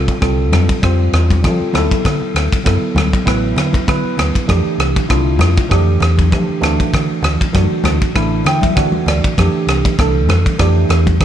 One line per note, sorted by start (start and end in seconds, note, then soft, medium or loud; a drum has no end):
0.00 0.15 G3 medium
0.00 0.16 C4 medium
0.00 0.16 F4 medium
0.00 0.16 A4 medium
0.08 kick medium
0.08 ride medium
0.21 0.52 C2 loud
0.21 0.77 G3 medium
0.21 0.77 C4 medium
0.21 0.77 F4 medium
0.21 0.78 A4 medium
0.21 kick loud
0.21 cross-stick medium
0.21 ride medium
0.52 0.66 F2 medium
0.52 cross-stick medium
0.52 ride medium
0.52 high conga medium
0.52 low conga medium
0.69 kick medium
0.69 ride medium
0.82 1.09 F2 medium
0.82 1.38 G3 medium
0.82 1.38 C4 medium
0.82 1.39 F4 medium
0.82 1.39 C5 medium
0.82 kick medium
0.82 cross-stick medium
0.82 ride medium
1.13 1.45 E2 medium
1.13 cross-stick medium
1.13 ride medium
1.13 low conga medium
1.30 kick medium
1.30 ride medium
1.30 high conga medium
1.42 1.58 F3 loud
1.42 1.73 G3 medium
1.42 1.74 C4 medium
1.42 1.74 F4 medium
1.42 1.74 A4 medium
1.42 kick loud
1.42 cross-stick medium
1.42 ride medium
1.60 muted fingered electric bass stroke soft
1.73 1.88 D2 medium
1.73 2.57 F#3 medium
1.73 2.58 B3 medium
1.73 2.58 E4 medium
1.73 2.58 A4 medium
1.73 cross-stick medium
1.73 ride medium
1.73 low conga medium
1.91 kick medium
1.91 ride medium
2.05 2.19 D3 medium
2.05 kick medium
2.05 cross-stick medium
2.05 ride medium
2.21 muted fingered electric bass stroke soft
2.34 2.49 D2 medium
2.34 cross-stick medium
2.34 ride medium
2.53 kick medium
2.53 ride medium
2.64 2.80 F#2 medium
2.64 3.21 F#3 medium
2.64 3.21 B3 medium
2.64 3.21 E4 medium
2.64 3.22 A4 medium
2.64 kick loud
2.64 cross-stick medium
2.64 ride medium
2.82 muted fingered electric bass stroke soft
2.95 3.10 D2 loud
2.95 cross-stick medium
2.95 ride medium
2.95 high conga medium
2.95 low conga medium
3.13 kick medium
3.13 ride medium
3.25 3.53 A1 medium
3.25 3.82 F#3 medium
3.25 3.82 B3 medium
3.25 3.82 E4 medium
3.25 3.83 B4 medium
3.25 kick medium
3.25 cross-stick medium
3.25 ride medium
3.56 3.71 D3 medium
3.56 cross-stick medium
3.56 ride medium
3.56 low conga medium
3.73 kick medium
3.73 ride medium
3.73 high conga medium
3.87 4.02 D3 medium
3.87 4.43 F#3 medium
3.87 4.43 B3 medium
3.87 4.44 E4 medium
3.87 4.44 B4 medium
3.87 kick loud
3.87 cross-stick medium
3.87 ride medium
4.04 muted fingered electric bass stroke soft
4.17 4.32 D2 medium
4.17 cross-stick medium
4.17 ride medium
4.17 low conga medium
4.35 kick medium
4.35 ride medium
4.47 4.63 F2 loud
4.47 5.04 E3 medium
4.47 5.04 A3 medium
4.47 5.04 D4 medium
4.47 5.04 G4 medium
4.47 kick medium
4.47 cross-stick medium
4.47 ride medium
4.65 muted fingered electric bass stroke soft
4.78 4.93 C2 medium
4.78 cross-stick medium
4.78 ride medium
4.96 kick medium
4.96 ride medium
5.09 5.40 C2 loud
5.09 5.65 A3 medium
5.09 5.66 D4 medium
5.09 5.65 E4 medium
5.09 5.66 F4 medium
5.09 kick loud
5.09 cross-stick medium
5.09 ride medium
5.39 5.55 F2 medium
5.39 cross-stick medium
5.39 ride medium
5.39 high conga medium
5.39 low conga medium
5.57 kick medium
5.57 ride medium
5.69 5.97 F2 medium
5.69 6.26 E3 medium
5.69 6.26 A3 medium
5.69 6.26 D4 medium
5.69 6.27 G4 medium
5.69 kick medium
5.69 cross-stick medium
5.69 ride medium
6.00 6.34 E2 medium
6.00 cross-stick medium
6.00 ride medium
6.00 low conga medium
6.17 kick medium
6.17 ride medium
6.17 high conga medium
6.31 6.59 E3 medium
6.31 6.47 F3 medium
6.31 6.60 A3 medium
6.31 6.60 D4 medium
6.31 6.63 G4 medium
6.31 kick loud
6.31 cross-stick medium
6.31 ride medium
6.49 muted fingered electric bass stroke soft
6.60 6.77 D2 medium
6.60 7.45 E3 medium
6.60 7.45 A3 medium
6.60 7.46 D4 medium
6.60 7.46 F#4 medium
6.60 cross-stick medium
6.60 ride medium
6.60 low conga medium
6.80 kick medium
6.80 ride medium
6.94 7.08 D3 medium
6.94 kick medium
6.94 cross-stick medium
6.94 ride medium
7.09 muted fingered electric bass stroke soft
7.23 7.37 D2 medium
7.23 cross-stick medium
7.23 ride medium
7.23 low conga medium
7.41 kick medium
7.41 ride medium
7.52 7.69 F#2 loud
7.52 8.09 E3 medium
7.52 8.09 A3 medium
7.52 8.10 D4 medium
7.52 8.10 F#4 medium
7.52 kick loud
7.52 cross-stick medium
7.52 ride medium
7.52 high conga medium
7.84 7.99 D2 medium
7.84 cross-stick medium
7.84 ride medium
7.84 high conga medium
7.84 low conga medium
8.01 kick medium
8.01 ride medium
8.14 8.41 A1 medium
8.14 8.70 E3 medium
8.14 8.71 A3 medium
8.14 8.71 D4 medium
8.14 8.72 E4 medium
8.14 kick medium
8.14 cross-stick medium
8.14 ride medium
8.44 8.60 D3 medium
8.44 8.62 G5 medium
8.44 cross-stick medium
8.44 ride medium
8.44 low conga medium
8.61 8.75 E5 medium
8.61 kick medium
8.61 ride medium
8.61 high conga medium
8.75 8.91 D3 medium
8.75 9.31 E3 medium
8.75 9.32 A3 medium
8.75 9.32 D4 medium
8.75 9.33 F#4 medium
8.75 9.04 F#5 medium
8.75 kick loud
8.75 cross-stick medium
8.75 ride medium
8.92 muted fingered electric bass stroke soft
8.92 high conga medium
9.06 9.21 D2 medium
9.06 9.36 D5 medium
9.06 cross-stick medium
9.06 ride medium
9.06 low conga medium
9.24 kick medium
9.24 ride medium
9.37 9.52 F2 loud
9.37 9.93 E3 medium
9.37 9.93 A3 medium
9.37 9.94 D4 medium
9.37 9.94 G4 medium
9.37 kick medium
9.37 cross-stick medium
9.37 ride medium
9.67 9.81 C2 medium
9.67 cross-stick medium
9.67 ride medium
9.85 muted fingered electric bass stroke soft
9.85 kick medium
9.85 ride medium
9.98 10.27 C2 loud
9.98 10.54 E3 medium
9.98 10.55 A3 medium
9.98 10.55 D4 medium
9.98 10.55 A4 medium
9.98 kick loud
9.98 cross-stick medium
9.98 ride medium
10.27 10.42 F2 medium
10.27 cross-stick medium
10.27 ride medium
10.27 high conga medium
10.27 low conga medium
10.46 kick medium
10.46 ride medium
10.58 10.86 F2 medium
10.58 11.15 E3 medium
10.58 11.15 A3 medium
10.58 11.15 D4 medium
10.58 11.15 G4 medium
10.58 kick medium
10.58 cross-stick medium
10.58 ride medium
10.89 11.22 E2 medium
10.89 cross-stick medium
10.89 ride medium
10.89 low conga medium
11.06 kick medium
11.06 ride medium
11.06 high conga medium
11.20 11.25 E3 medium
11.20 11.25 F3 loud
11.20 11.25 A3 medium
11.20 11.25 D4 medium
11.20 kick loud
11.20 cross-stick medium
11.20 ride medium